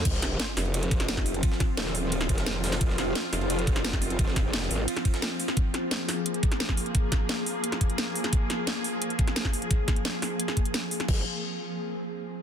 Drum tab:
CC |x---------------|----------------|----------------|----------------|
RD |x-x-x-xxxxxxxxxx|x-x-x-x-x-x-x-xx|x-x-x-xxxxxxxxxx|x-x-x-x-x-x-x-x-|
HH |x-x-x-o-xxxxx-ox|x-x-x-o-xxxxx-ox|x-x-x-o-xxxxx-ox|x-x-x-o-xxxxx-ox|
SD |-oo-o-o----ooo--|-oo-oo---o-oo-oo|-oo-o-o----ooo--|-oo-oo---o-oo--o|
BD |o---------o--o--|o-o-------o-----|o---------o--o--|o-o-------o-----|

CC |----------------|----------------|----------------|----------------|
RD |----------------|----------------|----------------|----------------|
HH |x-x-x-o-xxxxx-ox|x-x-x-o-xxxxx-ox|x-x-x-o-xxxxx-ox|x-xxx-o-xxxxx-ox|
SD |--o-o-o----ooo--|--o-o----o--o--o|--o-o------ooo--|--o-o-o--o--o--o|
BD |o---------o--o--|o-o-------o-----|o---------o--o--|o-o-------o-----|

CC |x---------------|
RD |----------------|
HH |----------------|
SD |----------------|
BD |o---------------|